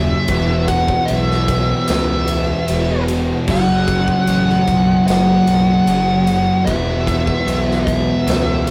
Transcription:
Already playing: D#1 F#2 C#3 F#3 C#4 G#4 E5
0.28 E1 E2 B2 E3 B3 F#4, kick, ride
0.68 F#5, kick, ride
0.88 kick
1.05 E5, ride
1.10 B1
1.31 snare
1.48 kick, ride
1.88 C#2 E5, snare, ride
2.28 ride
2.68 E1, ride
3.08 E2 B2 E3, ride
3.45 F#1 F#2 C#3 F#3 C#4 G#4, kick, crash
3.49 F#3 F#5
3.88 kick, ride
4.08 kick
4.27 A1, ride
4.49 snare
4.68 B1, kick, ride
5.07 F#1 F#5, snare, ride
5.46 B1, ride
5.87 F#1, ride
6.27 F#2 C#3 F#3, ride
6.66 E1 E2 B2 E3 B3 F#4 E5, kick, ride
7.07 kick, ride
7.27 kick
7.46 B1, ride
7.71 snare
7.86 E5, kick, ride
8.26 C#2, ride
8.30 snare
8.67 ride

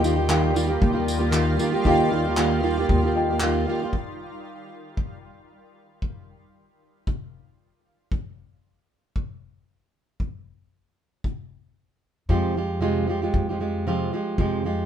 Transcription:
Already playing: D#2 D#3 G3 F4 D#5 G5
0.03 D#3 A#3 F4 G4, tambourine
0.16 A#3 F4 G4
0.29 D#3 A#3 F4 G4, clap
0.54 D#3 A#3 F4 G4, tambourine
0.68 A#3 F4 G4
0.82 D#2, kick
0.93 A#3 F4 G4
1.08 tambourine
1.19 A#3 F4 G4
1.31 D#3 A#3 F4 G4, clap
1.58 D#3 A#3 F4 G4, tambourine
1.72 A#3 F4 G4
1.84 D#2 D#3 A#3 F4 G4 D#5 G5, kick
2.11 D#3 A#3 F4 G4
2.25 A#3 F4 G4
2.37 D#3 A#3 F4 G4, clap
2.62 D#3 A#3 F4 G4
2.78 A#3 F4 G4
2.89 D#2, kick
3.04 A#3 F4 G4
3.15 F4 D#5 G5
3.30 A#3 F4 G4
3.40 D#3 A#3 F4 G4, clap
3.67 D#3 A#3 F4 G4
3.82 A#3 F4 G4
3.93 kick
4.97 kick
6.02 kick
7.07 kick
8.12 kick
9.16 kick
10.20 kick
11.24 kick
12.29 F2 C3 F3 G#3 F4 G4, kick
12.55 F3 G#3 F4 G4
12.81 F2 C3 F3 G#3 F4 G4
13.07 F3 G#3 F4 G4
13.22 F3 G#3 F4 G4
13.34 F2, kick
13.49 F3 G#3 F4 G4
13.60 F3 G#3 F4 G4
13.87 F2 C3 F3 G#3 F4 G4
14.13 F3 G#3 F4 G4
14.38 F2 C3 F3 G#3 F4 G4, kick
14.64 F3 G#3 F4 G4

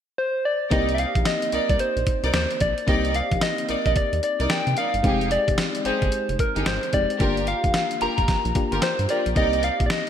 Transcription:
0.18 C5
0.45 D5
0.71 C2 A#3 C4 D#4 G4 A#4 D5 D#5, kick, closed hi-hat
0.89 closed hi-hat
0.94 E5, closed hi-hat
0.99 F5
1.15 A#1, kick, closed hi-hat
1.25 D#5, snare, closed hi-hat
1.42 closed hi-hat
1.52 C2 D#4 A#4 D5, closed hi-hat
1.69 C2 D5, kick, closed hi-hat
1.79 C5, closed hi-hat
1.96 A#1, closed hi-hat
2.07 kick, closed hi-hat
2.23 C2 D#4 A#4 D5, closed hi-hat
2.34 D#2 C5, snare, closed hi-hat
2.51 closed hi-hat
2.60 A#1 D5, kick, closed hi-hat
2.78 closed hi-hat
2.87 C2 A#3 C4 D#4 G4 A#4 D5 D#5, kick, closed hi-hat
3.05 closed hi-hat
3.14 F5, closed hi-hat
3.32 A#1, kick, closed hi-hat
3.41 D#5, snare, closed hi-hat
3.58 closed hi-hat
3.68 A#1 D#4 A#4 D5, closed hi-hat
3.86 A#1 D#5, kick, closed hi-hat
3.96 D5, kick, closed hi-hat
4.13 D#2, closed hi-hat
4.23 D5, closed hi-hat
4.39 C2 D#4 A#4 D5, closed hi-hat
4.50 G5, snare, closed hi-hat
4.67 C3, closed hi-hat
4.76 D#4 A#4 D5 F5, closed hi-hat
4.94 G1, closed hi-hat
5.03 F1 G#3 C4 D#4 G4 G#4, kick, closed hi-hat
5.21 closed hi-hat
5.31 D5, closed hi-hat
5.48 F1, kick, closed hi-hat
5.58 snare, closed hi-hat
5.75 closed hi-hat
5.85 G1 D#4 G4 G#4 C5, closed hi-hat
6.02 G1, kick, closed hi-hat
6.12 closed hi-hat
6.29 F1, closed hi-hat
6.39 A#4, kick, closed hi-hat
6.56 G1 D#4 G4 G#4, closed hi-hat
6.66 G#1 C5, snare, closed hi-hat
6.83 closed hi-hat
6.93 F1 G#3 C4 D#4 G4 D5, kick, closed hi-hat
7.10 closed hi-hat
7.19 G1 A#3 D4 F4 G4 A#4, kick, closed hi-hat
7.37 closed hi-hat
7.47 F5, closed hi-hat
7.64 F1, kick, closed hi-hat
7.74 snare, closed hi-hat
7.91 closed hi-hat
8.01 F1 F4 G4 A#4 A#5, closed hi-hat
8.18 F1, kick, closed hi-hat
8.28 kick, snare, closed hi-hat
8.45 A#1, closed hi-hat
8.55 A#3 D4 F4 G4, kick, closed hi-hat
8.72 G1 F4 G4 A#4, closed hi-hat
8.82 C5, snare, closed hi-hat
8.99 G2, closed hi-hat
9.09 F4 G4 A#4 D5, closed hi-hat
9.26 A#1, closed hi-hat
9.35 C2 A#3 C4 D#4 G4 A#4 D5 D#5, kick, closed hi-hat
9.53 closed hi-hat
9.63 F5, closed hi-hat
9.80 A#1, kick, closed hi-hat
9.86 D5, snare, closed hi-hat
9.92 D#5

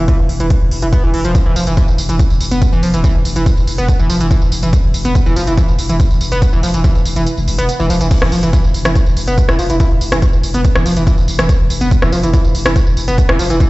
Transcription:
0.08 E3, kick, closed hi-hat
0.19 E1
0.29 E1, open hi-hat
0.40 E1 E3, closed hi-hat
0.50 kick, closed hi-hat
0.61 E1
0.71 E1, open hi-hat
0.82 E1 E3, closed hi-hat
0.93 B3, kick, closed hi-hat
1.03 E1 E3
1.14 E1 E3, open hi-hat
1.25 E1 F3, closed hi-hat
1.35 kick, closed hi-hat, tambourine
1.46 E1 E3
1.56 E1 F3, open hi-hat, tambourine
1.67 E1 E3, closed hi-hat, tambourine
1.77 E3, kick, closed hi-hat, tambourine
1.88 E1, tambourine
1.98 E1, open hi-hat, tambourine
2.09 E1 E3, closed hi-hat, tambourine
2.19 kick, closed hi-hat, tambourine
2.30 E1, tambourine
2.41 E1, open hi-hat, tambourine
2.51 E1 B3, closed hi-hat, tambourine
2.62 kick, closed hi-hat, tambourine
2.73 E1 E3, tambourine
2.83 E1 F3, open hi-hat, tambourine
2.94 E1 E3, closed hi-hat, tambourine
3.04 E3, kick, closed hi-hat, tambourine
3.15 E1
3.25 E1, open hi-hat, tambourine
3.36 E1 E3, closed hi-hat, tambourine
3.46 kick, closed hi-hat, tambourine
3.57 E1, tambourine
3.67 E1, open hi-hat, tambourine
3.78 E1 B3, closed hi-hat, tambourine
3.88 kick, closed hi-hat, tambourine
3.99 E1 E3, tambourine
4.10 E1 F3, open hi-hat, tambourine
4.20 E1 E3, closed hi-hat, tambourine
4.31 E3, kick, closed hi-hat, tambourine
4.42 E1, tambourine
4.52 E1, open hi-hat, tambourine
4.63 E1 E3, closed hi-hat, tambourine
4.73 kick, closed hi-hat, tambourine
4.84 E1
4.94 E1, open hi-hat, tambourine
5.05 E1 B3, closed hi-hat, tambourine
5.15 kick, closed hi-hat, tambourine
5.26 E1 E3, tambourine
5.36 E1 F3, open hi-hat, tambourine
5.47 E1 E3, closed hi-hat, tambourine
5.57 E3, kick, closed hi-hat, tambourine
5.68 E1, tambourine
5.79 E1, open hi-hat, tambourine
5.89 E1 E3, closed hi-hat, tambourine
6.00 kick, closed hi-hat, tambourine
6.11 E1, tambourine
6.21 E1, open hi-hat, tambourine
6.32 E1 B3, closed hi-hat, tambourine
6.42 kick, closed hi-hat, tambourine
6.53 E1 E3, tambourine
6.63 E1 F3, open hi-hat, tambourine
6.74 E1 E3, closed hi-hat, tambourine
6.84 E3, kick, closed hi-hat, tambourine
6.95 E1, tambourine
7.05 E1, open hi-hat, tambourine
7.16 E1 E3, closed hi-hat, tambourine
7.27 closed hi-hat, tambourine
7.37 E1, tambourine
7.48 E1, open hi-hat, tambourine
7.58 E1 B3, closed hi-hat, tambourine
7.69 closed hi-hat, tambourine
7.80 E1 E3, tambourine
7.90 E1 F3, open hi-hat, tambourine
8.01 E1 E3, closed hi-hat, tambourine
8.11 kick, closed hi-hat, crash, tambourine
8.22 E1 E3, cross-stick
8.32 E1 F3, open hi-hat, tambourine
8.43 E1 E3, closed hi-hat, tambourine
8.53 E3, kick, closed hi-hat, tambourine
8.64 E1, tambourine
8.74 E1, open hi-hat, tambourine
8.85 E1 E3, cross-stick, closed hi-hat, tambourine
8.95 kick, closed hi-hat, tambourine
9.06 E1, tambourine
9.16 E1, open hi-hat, tambourine
9.27 E1 B3, closed hi-hat, tambourine
9.38 kick, closed hi-hat, tambourine
9.49 E1 E3, cross-stick, tambourine
9.59 E1 F3, open hi-hat, tambourine
9.70 E1 E3, closed hi-hat, tambourine
9.80 E3, kick, closed hi-hat, tambourine
9.91 E1
10.01 E1, open hi-hat, tambourine
10.12 E1 E3, cross-stick, closed hi-hat, tambourine
10.22 kick, closed hi-hat, tambourine
10.33 E1, tambourine
10.43 E1, open hi-hat, tambourine
10.54 E1 B3, closed hi-hat, tambourine
10.64 kick, closed hi-hat, tambourine
10.75 E1 E3, cross-stick, tambourine
10.86 E1 F3, open hi-hat, tambourine
10.97 E1 E3, closed hi-hat, tambourine
11.07 E3, kick, closed hi-hat, tambourine
11.18 E1, tambourine
11.28 E1, open hi-hat, tambourine
11.39 E1 E3, cross-stick, closed hi-hat
11.49 kick, closed hi-hat, tambourine
11.60 E1
11.70 E1, open hi-hat, tambourine
11.81 E1 B3, closed hi-hat, tambourine
11.91 kick, closed hi-hat, tambourine
12.02 E1 E3, cross-stick, tambourine
12.12 E1 F3, open hi-hat, tambourine
12.23 E1 E3, closed hi-hat, tambourine
12.34 E3, kick, closed hi-hat, tambourine
12.44 E1, tambourine
12.55 E1, open hi-hat, tambourine
12.66 E1 E3, cross-stick, closed hi-hat, tambourine
12.76 kick, closed hi-hat, tambourine
12.87 E1, tambourine
12.97 E1, open hi-hat, tambourine
13.08 E1 B3, closed hi-hat, tambourine
13.18 kick, closed hi-hat, tambourine
13.29 E1 E3, cross-stick
13.39 E1 F3, open hi-hat, tambourine
13.50 E1 E3, closed hi-hat, tambourine
13.60 E3, kick, closed hi-hat, tambourine

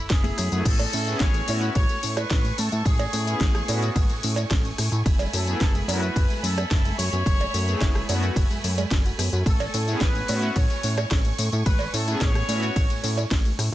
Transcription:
Already playing: A3 E5 B5
0.10 F#1 G#4, muted clean electric guitar stroke, kick, snare, closed hi-hat, ride, tambourine
0.23 A3 B3 E4 G#4, closed hi-hat, tambourine
0.38 F#2, cross-stick, open hi-hat, tambourine
0.51 F#2 A3 B3 E4 G#4, closed hi-hat, tambourine
0.65 A1 G#3 A3 A4 G#5 C#6, kick, closed hi-hat, crash, ride, tambourine
0.79 A3, closed hi-hat, tambourine, cowbell
0.93 A2 C#4, open hi-hat, tambourine
1.07 B3 C#4 E4 G#4, closed hi-hat, tambourine
1.20 A1 G#3 C#5, kick, snare, closed hi-hat, ride, tambourine
1.34 A3, closed hi-hat, tambourine
1.48 A2 B3 C#4 E4 F#4, open hi-hat, tambourine, cowbell
1.62 E4, closed hi-hat, tambourine
1.75 A1 G#3 C#5, kick, closed hi-hat, ride, tambourine
1.89 A3, closed hi-hat, tambourine
2.03 A2 C#4, open hi-hat, tambourine
2.17 E4 B4, cross-stick, closed hi-hat, tambourine, cowbell
2.30 A1 G#3, kick, snare, closed hi-hat, ride, tambourine
2.44 A3, closed hi-hat, tambourine
2.58 A2 C#4 A4, open hi-hat, tambourine
2.72 A2 E4, closed hi-hat, tambourine
2.85 A1 G#3 G#4, kick, closed hi-hat, ride, tambourine
2.99 A3, closed hi-hat, tambourine, cowbell
3.13 A2 C#4, open hi-hat, tambourine
3.27 B3 C#4 E4 G#4, closed hi-hat, tambourine
3.40 A1 G#3, kick, snare, closed hi-hat, ride, tambourine
3.55 A3, cross-stick, closed hi-hat, tambourine
3.68 A2 B3 C#4 E4 F#4, open hi-hat, tambourine, cowbell
3.82 E4, closed hi-hat, tambourine
3.96 A1 G#3, kick, closed hi-hat, ride, tambourine
4.10 A2 A3, closed hi-hat, tambourine
4.23 A2 C#4, open hi-hat, tambourine
4.36 E4, closed hi-hat, tambourine, cowbell
4.51 A1 G#3, kick, snare, closed hi-hat, ride, tambourine
4.65 A3, closed hi-hat, tambourine
4.78 A2 C#4, cross-stick, open hi-hat, tambourine
4.92 A2 E4, closed hi-hat, tambourine
5.06 F#1 F#3 E5 B5, kick, closed hi-hat, ride, tambourine
5.19 G#3, closed hi-hat, tambourine, cowbell
5.33 F#2 A3 A4, open hi-hat, tambourine
5.47 A3 B3 E4 G#4, closed hi-hat, tambourine
5.61 F#1 F#3 A4, kick, snare, closed hi-hat, ride, tambourine
5.75 G#3, closed hi-hat, tambourine
5.88 F#2 A3 B3 E4 F#4 B4, open hi-hat, tambourine, cowbell
6.03 B3, closed hi-hat, tambourine
6.16 F#1 F#3, kick, closed hi-hat, ride, tambourine
6.30 G#3, closed hi-hat, tambourine
6.43 F#2 A3 A4, open hi-hat, tambourine
6.58 B3, cross-stick, closed hi-hat, tambourine, cowbell
6.71 F#1 F#3, kick, snare, closed hi-hat, ride, tambourine
6.85 G#3, closed hi-hat, tambourine
6.98 F#2 A3 C#5, open hi-hat, tambourine
7.13 F#2 B3, closed hi-hat, tambourine
7.26 F#1 F#3, kick, closed hi-hat, ride, tambourine
7.41 G#3, closed hi-hat, tambourine, cowbell
7.54 F#2 A3, open hi-hat, tambourine
7.67 A3 B3 E4 G#4, closed hi-hat, tambourine
7.81 F#1 F#3, kick, snare, closed hi-hat, ride, tambourine
7.95 G#3, cross-stick, closed hi-hat, tambourine
8.08 F#2 A3 B3 E4 F#4, open hi-hat, tambourine, cowbell
8.23 B3, closed hi-hat, tambourine
8.36 F#1 F#3, kick, closed hi-hat, ride, tambourine
8.50 F#2 G#3, closed hi-hat, tambourine
8.64 F#2 A3, open hi-hat, tambourine
8.78 G#3, closed hi-hat, tambourine, cowbell
8.91 F#1 F#3, kick, snare, closed hi-hat, ride, tambourine
9.05 F#4, closed hi-hat, tambourine
9.19 F#2 B3, cross-stick, open hi-hat, tambourine
9.33 F#2 F#4, closed hi-hat, tambourine
9.46 A1 G#3 A4 C#6, kick, closed hi-hat, ride, tambourine
9.60 A3, closed hi-hat, tambourine, cowbell
9.74 A2 C#4, open hi-hat, tambourine
9.87 B3 C#4 E4 G#4, closed hi-hat, tambourine
10.01 A1 G#3 B4, kick, snare, closed hi-hat, ride, tambourine
10.15 A3, closed hi-hat, tambourine
10.28 A2 B3 C#4 E4 F#4, open hi-hat, tambourine, cowbell
10.42 E4, closed hi-hat, tambourine
10.56 A1 G#3 C#5, kick, closed hi-hat, ride, tambourine
10.70 A3, closed hi-hat, tambourine
10.83 A2 C#4, open hi-hat, tambourine
10.98 E4, cross-stick, closed hi-hat, tambourine, cowbell
11.11 A1 G#3, kick, snare, closed hi-hat, ride, tambourine
11.25 A3, closed hi-hat, tambourine
11.38 A2 C#4, open hi-hat, tambourine
11.52 A2 E4, closed hi-hat, tambourine
11.66 A1 G#3 B4, kick, closed hi-hat, ride, tambourine
11.79 A3, closed hi-hat, tambourine, cowbell
11.94 A2 C#4 A4, open hi-hat, tambourine
12.07 B3 C#4 E4 G#4, closed hi-hat, tambourine
12.21 A1 G#3 C#5, kick, snare, closed hi-hat, ride, tambourine
12.35 A3, cross-stick, closed hi-hat, tambourine
12.48 A2 B3 C#4 E4 F#4, open hi-hat, tambourine, cowbell
12.63 E4, closed hi-hat, tambourine
12.76 A1 G#3, kick, closed hi-hat, ride, tambourine
12.90 A2 A3, closed hi-hat, tambourine
13.03 A2 C#4, open hi-hat, tambourine
13.17 E4, closed hi-hat, tambourine, cowbell
13.31 A1 G#3, kick, snare, closed hi-hat, ride, tambourine
13.45 A3, closed hi-hat, tambourine
13.58 A2 C#4, cross-stick, open hi-hat, tambourine

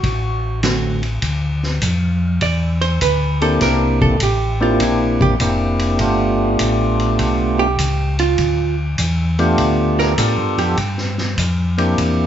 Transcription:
Already playing: F#4
0.03 A1, kick, ride
0.63 D3 A3 C4 F#4, snare, hi-hat pedal, ride
1.03 ride
1.22 D2, kick, ride
1.63 snare
1.82 F2, kick, hi-hat pedal, ride
2.41 E2 D5, kick, ride
2.81 C5, ride
3.01 D2 B4, kick, hi-hat pedal, ride
3.41 A#3 C4 D4 E4 G4 A4, ride
3.61 C2 A#4, kick, snare, ride
4.02 A4, kick
4.20 A1 G4, kick, hi-hat pedal, ride
4.60 A#3 C4 D4 E4 F4 G4
4.80 A#1 E4, kick, ride
5.21 G4, kick
5.40 F1 A#3 C4 D4 E4 G4, kick, hi-hat pedal, ride
5.79 ride
5.99 G1 A3 B3 D4 F4 G4, kick, ride
6.59 A1, kick, hi-hat pedal, ride
7.00 ride
7.19 B1, kick, ride
7.59 G4
7.79 C#2, kick, hi-hat pedal, ride
8.19 F4, ride
8.38 D2, kick, ride
8.98 E2, kick, hi-hat pedal, ride
9.39 A3 B3 D4 F4 G4, ride
9.58 D2, kick, ride
9.99 A#4, snare
10.18 A2 B3 D4 F4 G4 A4, kick, hi-hat pedal, ride
10.37 G2
10.57 F2 G4, ride
10.77 G2, kick, ride
10.98 snare
11.18 snare
11.38 F2, kick, hi-hat pedal, ride
11.78 A#3 C4 D4 E4 G4, ride
11.98 E2, kick, ride

